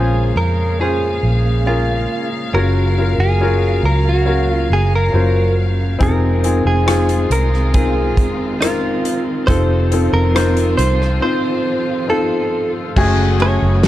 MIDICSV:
0, 0, Header, 1, 6, 480
1, 0, Start_track
1, 0, Tempo, 869565
1, 1398, Time_signature, 4, 2, 24, 8
1, 7661, End_track
2, 0, Start_track
2, 0, Title_t, "Clean electric guitar"
2, 0, Program_c, 0, 27
2, 0, Note_on_c, 0, 68, 80
2, 176, Note_off_c, 0, 68, 0
2, 206, Note_on_c, 0, 70, 84
2, 445, Note_off_c, 0, 70, 0
2, 447, Note_on_c, 0, 68, 77
2, 923, Note_on_c, 0, 65, 65
2, 937, Note_off_c, 0, 68, 0
2, 1259, Note_off_c, 0, 65, 0
2, 1405, Note_on_c, 0, 70, 81
2, 1740, Note_off_c, 0, 70, 0
2, 1767, Note_on_c, 0, 68, 85
2, 2126, Note_off_c, 0, 68, 0
2, 2128, Note_on_c, 0, 70, 80
2, 2247, Note_off_c, 0, 70, 0
2, 2257, Note_on_c, 0, 66, 72
2, 2488, Note_off_c, 0, 66, 0
2, 2488, Note_on_c, 0, 65, 72
2, 2585, Note_off_c, 0, 65, 0
2, 2612, Note_on_c, 0, 68, 78
2, 2717, Note_off_c, 0, 68, 0
2, 2735, Note_on_c, 0, 70, 74
2, 3065, Note_off_c, 0, 70, 0
2, 3327, Note_on_c, 0, 70, 77
2, 3679, Note_off_c, 0, 70, 0
2, 3681, Note_on_c, 0, 68, 73
2, 4041, Note_off_c, 0, 68, 0
2, 4043, Note_on_c, 0, 70, 83
2, 4274, Note_off_c, 0, 70, 0
2, 4276, Note_on_c, 0, 68, 83
2, 4750, Note_on_c, 0, 65, 69
2, 4772, Note_off_c, 0, 68, 0
2, 5092, Note_off_c, 0, 65, 0
2, 5227, Note_on_c, 0, 72, 87
2, 5593, Note_off_c, 0, 72, 0
2, 5595, Note_on_c, 0, 70, 90
2, 5945, Note_off_c, 0, 70, 0
2, 5948, Note_on_c, 0, 72, 88
2, 6189, Note_off_c, 0, 72, 0
2, 6196, Note_on_c, 0, 72, 85
2, 6655, Note_off_c, 0, 72, 0
2, 6678, Note_on_c, 0, 69, 69
2, 7016, Note_off_c, 0, 69, 0
2, 7408, Note_on_c, 0, 73, 91
2, 7648, Note_off_c, 0, 73, 0
2, 7661, End_track
3, 0, Start_track
3, 0, Title_t, "Grand piano"
3, 0, Program_c, 1, 0
3, 0, Control_c, 1, 64, 127
3, 0, Note_on_c, 1, 46, 51
3, 0, Note_on_c, 1, 53, 46
3, 0, Note_on_c, 1, 61, 64
3, 0, Note_on_c, 1, 65, 61
3, 0, Note_on_c, 1, 68, 59
3, 0, Note_on_c, 1, 70, 77
3, 0, Note_on_c, 1, 72, 69
3, 0, Note_on_c, 1, 73, 56
3, 177, Note_off_c, 1, 53, 0
3, 178, Note_off_c, 1, 46, 0
3, 411, Note_off_c, 1, 61, 0
3, 413, Note_off_c, 1, 65, 0
3, 414, Note_off_c, 1, 68, 0
3, 414, Note_off_c, 1, 72, 0
3, 437, Note_on_c, 1, 61, 55
3, 438, Note_on_c, 1, 65, 52
3, 442, Note_on_c, 1, 68, 51
3, 449, Note_on_c, 1, 72, 59
3, 894, Note_off_c, 1, 61, 0
3, 894, Note_off_c, 1, 65, 0
3, 897, Note_off_c, 1, 68, 0
3, 900, Note_off_c, 1, 72, 0
3, 918, Note_on_c, 1, 61, 56
3, 920, Note_on_c, 1, 65, 53
3, 922, Note_on_c, 1, 68, 54
3, 926, Note_off_c, 1, 70, 0
3, 926, Note_on_c, 1, 70, 59
3, 1374, Note_off_c, 1, 61, 0
3, 1375, Note_off_c, 1, 65, 0
3, 1376, Note_off_c, 1, 68, 0
3, 1378, Note_off_c, 1, 70, 0
3, 1400, Note_on_c, 1, 61, 73
3, 1403, Note_on_c, 1, 65, 64
3, 1405, Control_c, 1, 64, 0
3, 1406, Note_on_c, 1, 49, 49
3, 1407, Note_off_c, 1, 73, 0
3, 1407, Note_on_c, 1, 66, 69
3, 1408, Note_on_c, 1, 70, 86
3, 1498, Control_c, 1, 64, 127
3, 1627, Note_off_c, 1, 61, 0
3, 1629, Note_off_c, 1, 65, 0
3, 1631, Note_off_c, 1, 66, 0
3, 1631, Note_off_c, 1, 70, 0
3, 1644, Note_on_c, 1, 61, 51
3, 1645, Note_on_c, 1, 65, 52
3, 1648, Note_on_c, 1, 66, 52
3, 1653, Note_on_c, 1, 70, 64
3, 1869, Note_off_c, 1, 61, 0
3, 1870, Note_off_c, 1, 65, 0
3, 1871, Note_off_c, 1, 66, 0
3, 1874, Note_off_c, 1, 70, 0
3, 1881, Note_on_c, 1, 61, 63
3, 1882, Note_on_c, 1, 65, 65
3, 1884, Note_on_c, 1, 66, 65
3, 1889, Note_on_c, 1, 70, 79
3, 2100, Note_off_c, 1, 49, 0
3, 2336, Note_off_c, 1, 61, 0
3, 2336, Note_off_c, 1, 65, 0
3, 2337, Note_off_c, 1, 66, 0
3, 2340, Note_off_c, 1, 70, 0
3, 2349, Note_on_c, 1, 61, 61
3, 2353, Note_on_c, 1, 77, 55
3, 2357, Note_on_c, 1, 70, 67
3, 2358, Note_on_c, 1, 66, 54
3, 2810, Note_off_c, 1, 61, 0
3, 2812, Note_off_c, 1, 77, 0
3, 2814, Note_off_c, 1, 66, 0
3, 2814, Note_off_c, 1, 70, 0
3, 2829, Note_on_c, 1, 61, 55
3, 2833, Note_on_c, 1, 65, 48
3, 2835, Note_on_c, 1, 66, 48
3, 2838, Note_on_c, 1, 72, 59
3, 3290, Note_off_c, 1, 61, 0
3, 3292, Note_off_c, 1, 65, 0
3, 3293, Note_off_c, 1, 66, 0
3, 3294, Note_off_c, 1, 72, 0
3, 3304, Note_on_c, 1, 60, 75
3, 3308, Note_on_c, 1, 63, 75
3, 3310, Note_on_c, 1, 48, 54
3, 3312, Note_on_c, 1, 65, 69
3, 3314, Note_on_c, 1, 68, 82
3, 3326, Control_c, 1, 64, 0
3, 3414, Control_c, 1, 64, 127
3, 3539, Note_off_c, 1, 60, 0
3, 3541, Note_off_c, 1, 63, 0
3, 3543, Note_off_c, 1, 65, 0
3, 3544, Note_off_c, 1, 68, 0
3, 3551, Note_on_c, 1, 60, 53
3, 3555, Note_on_c, 1, 63, 54
3, 3558, Note_on_c, 1, 65, 52
3, 3561, Note_on_c, 1, 68, 65
3, 3778, Note_off_c, 1, 60, 0
3, 3781, Note_off_c, 1, 63, 0
3, 3783, Note_off_c, 1, 65, 0
3, 3787, Note_on_c, 1, 60, 69
3, 3788, Note_off_c, 1, 68, 0
3, 3790, Note_on_c, 1, 63, 65
3, 3791, Note_on_c, 1, 65, 69
3, 3797, Note_on_c, 1, 68, 74
3, 4012, Note_off_c, 1, 48, 0
3, 4249, Note_off_c, 1, 60, 0
3, 4250, Note_off_c, 1, 63, 0
3, 4251, Note_off_c, 1, 65, 0
3, 4254, Note_off_c, 1, 68, 0
3, 4271, Note_on_c, 1, 60, 61
3, 4278, Note_on_c, 1, 63, 59
3, 4279, Note_on_c, 1, 65, 57
3, 4280, Note_on_c, 1, 70, 73
3, 4731, Note_off_c, 1, 60, 0
3, 4734, Note_off_c, 1, 63, 0
3, 4735, Note_off_c, 1, 65, 0
3, 4735, Note_off_c, 1, 70, 0
3, 4754, Note_on_c, 1, 60, 53
3, 4754, Note_on_c, 1, 63, 52
3, 4760, Note_on_c, 1, 65, 51
3, 4762, Note_on_c, 1, 70, 68
3, 5212, Note_off_c, 1, 60, 0
3, 5212, Note_off_c, 1, 63, 0
3, 5215, Note_off_c, 1, 65, 0
3, 5216, Note_off_c, 1, 70, 0
3, 5232, Note_on_c, 1, 60, 78
3, 5235, Note_on_c, 1, 63, 71
3, 5237, Note_on_c, 1, 48, 57
3, 5238, Note_on_c, 1, 65, 72
3, 5241, Note_on_c, 1, 69, 96
3, 5245, Control_c, 1, 64, 0
3, 5340, Control_c, 1, 64, 127
3, 5463, Note_off_c, 1, 60, 0
3, 5465, Note_off_c, 1, 63, 0
3, 5466, Note_off_c, 1, 65, 0
3, 5468, Note_off_c, 1, 69, 0
3, 5473, Note_on_c, 1, 60, 63
3, 5478, Note_on_c, 1, 63, 58
3, 5482, Note_on_c, 1, 65, 56
3, 5482, Note_on_c, 1, 69, 68
3, 5702, Note_off_c, 1, 60, 0
3, 5704, Note_off_c, 1, 63, 0
3, 5705, Note_off_c, 1, 65, 0
3, 5708, Note_off_c, 1, 69, 0
3, 5710, Note_on_c, 1, 60, 69
3, 5713, Note_on_c, 1, 63, 71
3, 5713, Note_on_c, 1, 65, 71
3, 5718, Note_on_c, 1, 72, 89
3, 5936, Note_off_c, 1, 48, 0
3, 6170, Note_off_c, 1, 60, 0
3, 6172, Note_off_c, 1, 63, 0
3, 6172, Note_off_c, 1, 65, 0
3, 6174, Note_off_c, 1, 72, 0
3, 6188, Note_on_c, 1, 60, 69
3, 6188, Note_on_c, 1, 63, 57
3, 6197, Note_on_c, 1, 65, 54
3, 6198, Note_on_c, 1, 72, 70
3, 6649, Note_off_c, 1, 60, 0
3, 6649, Note_off_c, 1, 63, 0
3, 6654, Note_off_c, 1, 65, 0
3, 6654, Note_off_c, 1, 72, 0
3, 6666, Note_on_c, 1, 60, 54
3, 6671, Note_on_c, 1, 63, 55
3, 6673, Note_on_c, 1, 65, 58
3, 6678, Note_on_c, 1, 69, 62
3, 7128, Note_off_c, 1, 60, 0
3, 7131, Note_off_c, 1, 63, 0
3, 7132, Note_off_c, 1, 65, 0
3, 7134, Note_off_c, 1, 69, 0
3, 7156, Note_on_c, 1, 57, 98
3, 7157, Note_on_c, 1, 61, 90
3, 7159, Note_on_c, 1, 49, 67
3, 7160, Note_on_c, 1, 66, 94
3, 7163, Note_on_c, 1, 68, 121
3, 7166, Control_c, 1, 64, 0
3, 7250, Control_c, 1, 64, 127
3, 7385, Note_off_c, 1, 57, 0
3, 7386, Note_off_c, 1, 61, 0
3, 7387, Note_off_c, 1, 66, 0
3, 7389, Note_off_c, 1, 68, 0
3, 7394, Note_on_c, 1, 57, 64
3, 7397, Note_on_c, 1, 61, 63
3, 7398, Note_on_c, 1, 66, 57
3, 7401, Note_on_c, 1, 68, 70
3, 7624, Note_off_c, 1, 57, 0
3, 7626, Note_off_c, 1, 61, 0
3, 7626, Note_off_c, 1, 66, 0
3, 7628, Note_off_c, 1, 68, 0
3, 7636, Note_on_c, 1, 57, 82
3, 7638, Note_on_c, 1, 66, 69
3, 7640, Note_on_c, 1, 61, 69
3, 7661, Note_off_c, 1, 49, 0
3, 7661, Note_off_c, 1, 57, 0
3, 7661, Note_off_c, 1, 61, 0
3, 7661, Note_off_c, 1, 66, 0
3, 7661, End_track
4, 0, Start_track
4, 0, Title_t, "String section"
4, 0, Program_c, 2, 48
4, 0, Note_on_c, 2, 49, 61
4, 0, Note_on_c, 2, 56, 58
4, 0, Note_on_c, 2, 58, 55
4, 0, Note_on_c, 2, 77, 72
4, 1382, Note_off_c, 2, 56, 0
4, 1394, Note_on_c, 2, 54, 64
4, 3297, Note_off_c, 2, 49, 0
4, 3297, Note_off_c, 2, 54, 0
4, 3298, Note_off_c, 2, 58, 0
4, 3299, Note_off_c, 2, 77, 0
4, 3309, Note_on_c, 2, 65, 75
4, 3310, Note_on_c, 2, 56, 65
4, 3312, Note_on_c, 2, 51, 67
4, 3315, Note_on_c, 2, 60, 71
4, 5215, Note_off_c, 2, 56, 0
4, 5215, Note_off_c, 2, 65, 0
4, 5233, Note_on_c, 2, 53, 65
4, 5236, Note_on_c, 2, 65, 80
4, 7133, Note_off_c, 2, 51, 0
4, 7135, Note_off_c, 2, 60, 0
4, 7137, Note_off_c, 2, 53, 0
4, 7138, Note_off_c, 2, 65, 0
4, 7160, Note_on_c, 2, 66, 88
4, 7163, Note_on_c, 2, 57, 74
4, 7164, Note_on_c, 2, 54, 69
4, 7165, Note_on_c, 2, 49, 78
4, 7661, Note_off_c, 2, 49, 0
4, 7661, Note_off_c, 2, 54, 0
4, 7661, Note_off_c, 2, 57, 0
4, 7661, Note_off_c, 2, 66, 0
4, 7661, End_track
5, 0, Start_track
5, 0, Title_t, "Fingered electric bass"
5, 0, Program_c, 3, 33
5, 0, Note_on_c, 3, 34, 78
5, 174, Note_off_c, 3, 34, 0
5, 197, Note_on_c, 3, 41, 65
5, 656, Note_off_c, 3, 41, 0
5, 680, Note_on_c, 3, 34, 70
5, 1137, Note_off_c, 3, 34, 0
5, 1400, Note_on_c, 3, 30, 86
5, 1737, Note_off_c, 3, 30, 0
5, 1757, Note_on_c, 3, 30, 70
5, 2096, Note_off_c, 3, 30, 0
5, 2115, Note_on_c, 3, 37, 72
5, 2575, Note_off_c, 3, 37, 0
5, 2595, Note_on_c, 3, 30, 79
5, 2820, Note_off_c, 3, 30, 0
5, 2835, Note_on_c, 3, 30, 85
5, 3295, Note_off_c, 3, 30, 0
5, 3315, Note_on_c, 3, 29, 95
5, 3655, Note_off_c, 3, 29, 0
5, 3672, Note_on_c, 3, 29, 76
5, 4013, Note_off_c, 3, 29, 0
5, 4031, Note_on_c, 3, 36, 78
5, 4512, Note_off_c, 3, 36, 0
5, 4512, Note_on_c, 3, 29, 76
5, 4973, Note_off_c, 3, 29, 0
5, 5235, Note_on_c, 3, 29, 97
5, 5574, Note_off_c, 3, 29, 0
5, 5591, Note_on_c, 3, 29, 76
5, 5932, Note_off_c, 3, 29, 0
5, 5950, Note_on_c, 3, 36, 72
5, 6177, Note_off_c, 3, 36, 0
5, 7157, Note_on_c, 3, 30, 94
5, 7496, Note_off_c, 3, 30, 0
5, 7519, Note_on_c, 3, 30, 90
5, 7661, Note_off_c, 3, 30, 0
5, 7661, End_track
6, 0, Start_track
6, 0, Title_t, "Drums"
6, 3315, Note_on_c, 9, 42, 66
6, 3316, Note_on_c, 9, 36, 95
6, 3370, Note_off_c, 9, 42, 0
6, 3371, Note_off_c, 9, 36, 0
6, 3555, Note_on_c, 9, 42, 51
6, 3610, Note_off_c, 9, 42, 0
6, 3796, Note_on_c, 9, 42, 73
6, 3797, Note_on_c, 9, 37, 94
6, 3852, Note_off_c, 9, 37, 0
6, 3852, Note_off_c, 9, 42, 0
6, 3914, Note_on_c, 9, 42, 46
6, 3969, Note_off_c, 9, 42, 0
6, 4036, Note_on_c, 9, 42, 62
6, 4091, Note_off_c, 9, 42, 0
6, 4161, Note_on_c, 9, 37, 27
6, 4216, Note_off_c, 9, 37, 0
6, 4273, Note_on_c, 9, 42, 75
6, 4275, Note_on_c, 9, 36, 82
6, 4328, Note_off_c, 9, 42, 0
6, 4330, Note_off_c, 9, 36, 0
6, 4512, Note_on_c, 9, 36, 84
6, 4513, Note_on_c, 9, 42, 50
6, 4567, Note_off_c, 9, 36, 0
6, 4568, Note_off_c, 9, 42, 0
6, 4757, Note_on_c, 9, 42, 85
6, 4760, Note_on_c, 9, 37, 105
6, 4813, Note_off_c, 9, 42, 0
6, 4815, Note_off_c, 9, 37, 0
6, 4997, Note_on_c, 9, 42, 63
6, 5052, Note_off_c, 9, 42, 0
6, 5234, Note_on_c, 9, 36, 107
6, 5235, Note_on_c, 9, 42, 75
6, 5290, Note_off_c, 9, 36, 0
6, 5290, Note_off_c, 9, 42, 0
6, 5475, Note_on_c, 9, 42, 54
6, 5530, Note_off_c, 9, 42, 0
6, 5718, Note_on_c, 9, 37, 98
6, 5718, Note_on_c, 9, 42, 76
6, 5773, Note_off_c, 9, 37, 0
6, 5773, Note_off_c, 9, 42, 0
6, 5833, Note_on_c, 9, 42, 45
6, 5888, Note_off_c, 9, 42, 0
6, 5954, Note_on_c, 9, 42, 61
6, 6010, Note_off_c, 9, 42, 0
6, 6082, Note_on_c, 9, 37, 31
6, 6137, Note_off_c, 9, 37, 0
6, 7156, Note_on_c, 9, 49, 97
6, 7157, Note_on_c, 9, 36, 109
6, 7211, Note_off_c, 9, 49, 0
6, 7212, Note_off_c, 9, 36, 0
6, 7395, Note_on_c, 9, 51, 42
6, 7451, Note_off_c, 9, 51, 0
6, 7637, Note_on_c, 9, 38, 97
6, 7637, Note_on_c, 9, 51, 69
6, 7661, Note_off_c, 9, 38, 0
6, 7661, Note_off_c, 9, 51, 0
6, 7661, End_track
0, 0, End_of_file